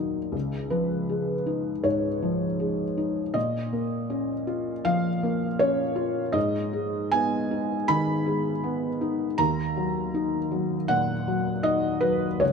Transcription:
0, 0, Header, 1, 2, 480
1, 0, Start_track
1, 0, Tempo, 751880
1, 217, Time_signature, 4, 2, 24, 8
1, 4055, Tempo, 771208
1, 5015, Tempo, 753769
1, 7964, End_track
2, 0, Start_track
2, 0, Title_t, "Felt piano"
2, 0, Program_c, 0, 0
2, 0, Control_c, 0, 64, 127
2, 0, Note_on_c, 0, 46, 39
2, 0, Note_on_c, 0, 51, 40
2, 0, Note_on_c, 0, 54, 41
2, 0, Note_on_c, 0, 63, 42
2, 0, Note_on_c, 0, 75, 72
2, 115, Note_off_c, 0, 54, 0
2, 205, Note_on_c, 0, 37, 48
2, 216, Note_off_c, 0, 63, 0
2, 228, Control_c, 0, 64, 0
2, 229, Note_off_c, 0, 75, 0
2, 232, Note_off_c, 0, 46, 0
2, 234, Note_off_c, 0, 51, 0
2, 320, Control_c, 0, 64, 127
2, 449, Note_on_c, 0, 71, 68
2, 453, Note_on_c, 0, 53, 39
2, 698, Note_on_c, 0, 56, 41
2, 845, Note_off_c, 0, 53, 0
2, 934, Note_on_c, 0, 63, 42
2, 1085, Note_off_c, 0, 56, 0
2, 1151, Note_off_c, 0, 37, 0
2, 1172, Note_on_c, 0, 73, 71
2, 1175, Note_on_c, 0, 44, 40
2, 1177, Note_off_c, 0, 71, 0
2, 1321, Note_off_c, 0, 63, 0
2, 1420, Note_on_c, 0, 53, 46
2, 1563, Note_off_c, 0, 44, 0
2, 1658, Note_on_c, 0, 56, 43
2, 1806, Note_off_c, 0, 53, 0
2, 1899, Note_on_c, 0, 63, 45
2, 2043, Note_off_c, 0, 56, 0
2, 2130, Note_on_c, 0, 75, 78
2, 2132, Note_on_c, 0, 46, 49
2, 2136, Note_off_c, 0, 73, 0
2, 2139, Note_off_c, 0, 63, 0
2, 2152, Control_c, 0, 64, 0
2, 2264, Control_c, 0, 64, 127
2, 2380, Note_on_c, 0, 58, 41
2, 2617, Note_on_c, 0, 61, 49
2, 2762, Note_off_c, 0, 58, 0
2, 2855, Note_on_c, 0, 65, 48
2, 3001, Note_off_c, 0, 61, 0
2, 3068, Note_off_c, 0, 46, 0
2, 3093, Note_off_c, 0, 75, 0
2, 3095, Note_on_c, 0, 77, 97
2, 3097, Note_on_c, 0, 53, 47
2, 3241, Note_off_c, 0, 65, 0
2, 3340, Note_on_c, 0, 58, 48
2, 3481, Note_off_c, 0, 53, 0
2, 3571, Note_on_c, 0, 73, 88
2, 3575, Note_on_c, 0, 61, 49
2, 3576, Note_off_c, 0, 77, 0
2, 3722, Note_off_c, 0, 58, 0
2, 3802, Note_on_c, 0, 65, 50
2, 3958, Note_off_c, 0, 61, 0
2, 4038, Note_on_c, 0, 75, 91
2, 4043, Note_on_c, 0, 44, 59
2, 4049, Note_off_c, 0, 65, 0
2, 4052, Note_off_c, 0, 73, 0
2, 4068, Control_c, 0, 64, 0
2, 4168, Control_c, 0, 64, 127
2, 4291, Note_on_c, 0, 56, 49
2, 4530, Note_on_c, 0, 80, 100
2, 4533, Note_off_c, 0, 75, 0
2, 4533, Note_on_c, 0, 59, 48
2, 4684, Note_off_c, 0, 56, 0
2, 4776, Note_on_c, 0, 63, 51
2, 4918, Note_off_c, 0, 59, 0
2, 4985, Note_off_c, 0, 44, 0
2, 5007, Note_on_c, 0, 83, 112
2, 5010, Note_off_c, 0, 80, 0
2, 5011, Note_on_c, 0, 51, 50
2, 5157, Note_off_c, 0, 63, 0
2, 5251, Note_on_c, 0, 56, 51
2, 5396, Note_off_c, 0, 51, 0
2, 5488, Note_on_c, 0, 59, 54
2, 5636, Note_off_c, 0, 56, 0
2, 5726, Note_on_c, 0, 63, 53
2, 5875, Note_off_c, 0, 59, 0
2, 5960, Note_on_c, 0, 82, 110
2, 5964, Note_on_c, 0, 39, 62
2, 5969, Note_off_c, 0, 83, 0
2, 5970, Note_off_c, 0, 63, 0
2, 5983, Control_c, 0, 64, 0
2, 6084, Control_c, 0, 64, 127
2, 6208, Note_on_c, 0, 54, 47
2, 6447, Note_on_c, 0, 63, 55
2, 6597, Note_off_c, 0, 54, 0
2, 6683, Note_on_c, 0, 54, 51
2, 6837, Note_off_c, 0, 63, 0
2, 6907, Note_off_c, 0, 39, 0
2, 6918, Note_on_c, 0, 78, 99
2, 6924, Note_on_c, 0, 46, 50
2, 6930, Note_off_c, 0, 82, 0
2, 7074, Note_off_c, 0, 54, 0
2, 7167, Note_on_c, 0, 54, 51
2, 7313, Note_off_c, 0, 46, 0
2, 7396, Note_on_c, 0, 75, 99
2, 7399, Note_on_c, 0, 63, 48
2, 7406, Note_off_c, 0, 78, 0
2, 7555, Note_off_c, 0, 54, 0
2, 7633, Note_on_c, 0, 71, 93
2, 7640, Note_on_c, 0, 54, 50
2, 7646, Note_off_c, 0, 75, 0
2, 7792, Note_off_c, 0, 63, 0
2, 7884, Note_on_c, 0, 73, 81
2, 7886, Note_off_c, 0, 71, 0
2, 7888, Note_on_c, 0, 37, 59
2, 7889, Note_off_c, 0, 54, 0
2, 7909, Control_c, 0, 64, 0
2, 7964, Note_off_c, 0, 37, 0
2, 7964, Note_off_c, 0, 73, 0
2, 7964, End_track
0, 0, End_of_file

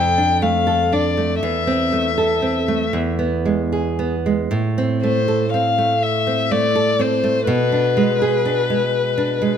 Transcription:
0, 0, Header, 1, 3, 480
1, 0, Start_track
1, 0, Key_signature, 0, "minor"
1, 0, Tempo, 1000000
1, 685, Time_signature, 6, 3, 24, 8
1, 1166, Tempo, 1032702
1, 2606, Tempo, 970874
1, 4607, End_track
2, 0, Start_track
2, 0, Title_t, "Violin"
2, 0, Program_c, 0, 40
2, 0, Note_on_c, 0, 79, 62
2, 203, Note_on_c, 0, 77, 58
2, 210, Note_off_c, 0, 79, 0
2, 445, Note_on_c, 0, 74, 50
2, 452, Note_off_c, 0, 77, 0
2, 682, Note_off_c, 0, 74, 0
2, 685, Note_on_c, 0, 76, 50
2, 1388, Note_off_c, 0, 76, 0
2, 2371, Note_on_c, 0, 72, 55
2, 2590, Note_off_c, 0, 72, 0
2, 2604, Note_on_c, 0, 77, 57
2, 2852, Note_on_c, 0, 76, 52
2, 2859, Note_off_c, 0, 77, 0
2, 3093, Note_on_c, 0, 74, 59
2, 3101, Note_off_c, 0, 76, 0
2, 3337, Note_on_c, 0, 72, 53
2, 3344, Note_off_c, 0, 74, 0
2, 3570, Note_off_c, 0, 72, 0
2, 3573, Note_on_c, 0, 71, 62
2, 4607, Note_off_c, 0, 71, 0
2, 4607, End_track
3, 0, Start_track
3, 0, Title_t, "Nylon-string guitar"
3, 0, Program_c, 1, 24
3, 0, Note_on_c, 1, 41, 58
3, 85, Note_on_c, 1, 62, 41
3, 202, Note_on_c, 1, 57, 42
3, 275, Note_off_c, 1, 62, 0
3, 320, Note_on_c, 1, 69, 40
3, 394, Note_off_c, 1, 57, 0
3, 443, Note_on_c, 1, 62, 38
3, 515, Note_off_c, 1, 69, 0
3, 563, Note_on_c, 1, 57, 31
3, 637, Note_off_c, 1, 62, 0
3, 663, Note_off_c, 1, 41, 0
3, 685, Note_off_c, 1, 57, 0
3, 685, Note_on_c, 1, 40, 53
3, 802, Note_on_c, 1, 60, 39
3, 923, Note_on_c, 1, 57, 37
3, 996, Note_off_c, 1, 60, 0
3, 1045, Note_on_c, 1, 69, 36
3, 1117, Note_off_c, 1, 57, 0
3, 1162, Note_on_c, 1, 60, 33
3, 1236, Note_off_c, 1, 69, 0
3, 1283, Note_on_c, 1, 57, 35
3, 1352, Note_off_c, 1, 60, 0
3, 1383, Note_off_c, 1, 40, 0
3, 1399, Note_on_c, 1, 40, 46
3, 1402, Note_off_c, 1, 57, 0
3, 1518, Note_on_c, 1, 59, 34
3, 1643, Note_on_c, 1, 56, 33
3, 1713, Note_off_c, 1, 59, 0
3, 1768, Note_on_c, 1, 68, 33
3, 1838, Note_off_c, 1, 56, 0
3, 1891, Note_on_c, 1, 59, 38
3, 1964, Note_off_c, 1, 68, 0
3, 2017, Note_on_c, 1, 56, 34
3, 2087, Note_off_c, 1, 59, 0
3, 2114, Note_off_c, 1, 40, 0
3, 2132, Note_on_c, 1, 45, 50
3, 2136, Note_off_c, 1, 56, 0
3, 2258, Note_on_c, 1, 60, 39
3, 2377, Note_on_c, 1, 57, 41
3, 2446, Note_off_c, 1, 60, 0
3, 2491, Note_on_c, 1, 69, 41
3, 2563, Note_off_c, 1, 57, 0
3, 2612, Note_on_c, 1, 60, 39
3, 2681, Note_off_c, 1, 69, 0
3, 2733, Note_on_c, 1, 57, 37
3, 2805, Note_off_c, 1, 60, 0
3, 2973, Note_on_c, 1, 60, 39
3, 3089, Note_off_c, 1, 57, 0
3, 3095, Note_on_c, 1, 57, 38
3, 3166, Note_off_c, 1, 60, 0
3, 3212, Note_on_c, 1, 69, 41
3, 3288, Note_off_c, 1, 57, 0
3, 3331, Note_on_c, 1, 60, 43
3, 3407, Note_off_c, 1, 69, 0
3, 3451, Note_on_c, 1, 57, 35
3, 3526, Note_off_c, 1, 60, 0
3, 3557, Note_off_c, 1, 45, 0
3, 3568, Note_on_c, 1, 47, 55
3, 3574, Note_off_c, 1, 57, 0
3, 3691, Note_on_c, 1, 62, 42
3, 3813, Note_on_c, 1, 56, 48
3, 3887, Note_off_c, 1, 62, 0
3, 3936, Note_on_c, 1, 68, 43
3, 4008, Note_off_c, 1, 56, 0
3, 4053, Note_on_c, 1, 62, 41
3, 4129, Note_off_c, 1, 68, 0
3, 4175, Note_on_c, 1, 56, 48
3, 4247, Note_off_c, 1, 62, 0
3, 4410, Note_on_c, 1, 62, 50
3, 4523, Note_off_c, 1, 56, 0
3, 4529, Note_on_c, 1, 56, 44
3, 4598, Note_off_c, 1, 62, 0
3, 4607, Note_off_c, 1, 47, 0
3, 4607, Note_off_c, 1, 56, 0
3, 4607, End_track
0, 0, End_of_file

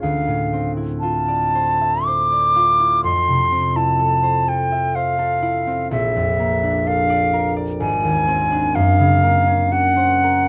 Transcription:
0, 0, Header, 1, 3, 480
1, 0, Start_track
1, 0, Tempo, 998336
1, 10, Time_signature, 3, 2, 24, 8
1, 490, Tempo, 1047120
1, 970, Tempo, 978793
1, 1450, Tempo, 960000
1, 2890, Tempo, 940439
1, 4330, Tempo, 969305
1, 4810, Tempo, 1039861
1, 5164, End_track
2, 0, Start_track
2, 0, Title_t, "Flute"
2, 0, Program_c, 0, 73
2, 6, Note_on_c, 0, 77, 57
2, 346, Note_off_c, 0, 77, 0
2, 480, Note_on_c, 0, 81, 59
2, 963, Note_on_c, 0, 86, 66
2, 970, Note_off_c, 0, 81, 0
2, 1445, Note_off_c, 0, 86, 0
2, 1448, Note_on_c, 0, 84, 69
2, 1808, Note_on_c, 0, 81, 62
2, 1816, Note_off_c, 0, 84, 0
2, 2170, Note_on_c, 0, 79, 62
2, 2178, Note_off_c, 0, 81, 0
2, 2404, Note_on_c, 0, 77, 64
2, 2412, Note_off_c, 0, 79, 0
2, 2883, Note_off_c, 0, 77, 0
2, 2886, Note_on_c, 0, 76, 67
2, 3373, Note_on_c, 0, 77, 71
2, 3380, Note_off_c, 0, 76, 0
2, 3715, Note_off_c, 0, 77, 0
2, 3850, Note_on_c, 0, 80, 74
2, 4333, Note_on_c, 0, 77, 83
2, 4340, Note_off_c, 0, 80, 0
2, 4811, Note_on_c, 0, 78, 82
2, 4818, Note_off_c, 0, 77, 0
2, 5164, Note_off_c, 0, 78, 0
2, 5164, End_track
3, 0, Start_track
3, 0, Title_t, "Harp"
3, 0, Program_c, 1, 46
3, 0, Note_on_c, 1, 65, 36
3, 0, Note_on_c, 1, 72, 30
3, 13, Note_on_c, 1, 38, 38
3, 132, Note_on_c, 1, 45, 30
3, 255, Note_on_c, 1, 60, 36
3, 370, Note_on_c, 1, 64, 32
3, 488, Note_off_c, 1, 65, 0
3, 493, Note_on_c, 1, 65, 33
3, 611, Note_on_c, 1, 74, 31
3, 727, Note_off_c, 1, 72, 0
3, 733, Note_on_c, 1, 72, 37
3, 854, Note_on_c, 1, 76, 36
3, 968, Note_off_c, 1, 72, 0
3, 973, Note_on_c, 1, 72, 34
3, 1088, Note_off_c, 1, 74, 0
3, 1094, Note_on_c, 1, 74, 36
3, 1206, Note_off_c, 1, 65, 0
3, 1212, Note_on_c, 1, 65, 36
3, 1324, Note_off_c, 1, 64, 0
3, 1330, Note_on_c, 1, 64, 34
3, 1447, Note_on_c, 1, 41, 41
3, 1469, Note_off_c, 1, 74, 0
3, 1470, Note_off_c, 1, 45, 0
3, 1471, Note_off_c, 1, 38, 0
3, 1570, Note_on_c, 1, 48, 32
3, 1682, Note_off_c, 1, 60, 0
3, 1688, Note_on_c, 1, 60, 37
3, 1801, Note_off_c, 1, 64, 0
3, 1807, Note_on_c, 1, 64, 36
3, 1924, Note_on_c, 1, 69, 40
3, 2037, Note_off_c, 1, 72, 0
3, 2043, Note_on_c, 1, 72, 34
3, 2160, Note_off_c, 1, 69, 0
3, 2166, Note_on_c, 1, 69, 41
3, 2282, Note_off_c, 1, 76, 0
3, 2288, Note_on_c, 1, 76, 43
3, 2399, Note_off_c, 1, 72, 0
3, 2405, Note_on_c, 1, 72, 35
3, 2516, Note_off_c, 1, 69, 0
3, 2522, Note_on_c, 1, 69, 40
3, 2633, Note_off_c, 1, 64, 0
3, 2639, Note_on_c, 1, 64, 43
3, 2756, Note_off_c, 1, 60, 0
3, 2762, Note_on_c, 1, 60, 38
3, 2883, Note_on_c, 1, 34, 48
3, 2905, Note_off_c, 1, 60, 0
3, 2906, Note_off_c, 1, 72, 0
3, 2907, Note_off_c, 1, 41, 0
3, 2909, Note_off_c, 1, 48, 0
3, 3009, Note_on_c, 1, 41, 35
3, 3129, Note_on_c, 1, 58, 42
3, 3163, Note_off_c, 1, 65, 0
3, 3250, Note_on_c, 1, 62, 42
3, 3366, Note_off_c, 1, 69, 0
3, 3373, Note_on_c, 1, 69, 44
3, 3488, Note_on_c, 1, 74, 42
3, 3609, Note_on_c, 1, 70, 43
3, 3720, Note_off_c, 1, 74, 0
3, 3727, Note_on_c, 1, 74, 45
3, 3848, Note_on_c, 1, 32, 47
3, 3863, Note_off_c, 1, 64, 0
3, 3864, Note_off_c, 1, 34, 0
3, 3866, Note_off_c, 1, 41, 0
3, 3866, Note_off_c, 1, 58, 0
3, 3866, Note_off_c, 1, 76, 0
3, 3867, Note_off_c, 1, 70, 0
3, 3868, Note_off_c, 1, 69, 0
3, 3970, Note_on_c, 1, 39, 39
3, 4090, Note_on_c, 1, 60, 46
3, 4207, Note_off_c, 1, 62, 0
3, 4213, Note_on_c, 1, 62, 41
3, 4334, Note_on_c, 1, 42, 52
3, 4348, Note_off_c, 1, 74, 0
3, 4349, Note_off_c, 1, 32, 0
3, 4350, Note_off_c, 1, 39, 0
3, 4351, Note_off_c, 1, 62, 0
3, 4451, Note_on_c, 1, 49, 42
3, 4571, Note_on_c, 1, 58, 47
3, 4692, Note_on_c, 1, 61, 42
3, 4810, Note_on_c, 1, 66, 48
3, 4924, Note_on_c, 1, 72, 44
3, 5050, Note_on_c, 1, 70, 43
3, 5164, Note_off_c, 1, 42, 0
3, 5164, Note_off_c, 1, 49, 0
3, 5164, Note_off_c, 1, 58, 0
3, 5164, Note_off_c, 1, 60, 0
3, 5164, Note_off_c, 1, 61, 0
3, 5164, Note_off_c, 1, 66, 0
3, 5164, Note_off_c, 1, 70, 0
3, 5164, Note_off_c, 1, 72, 0
3, 5164, End_track
0, 0, End_of_file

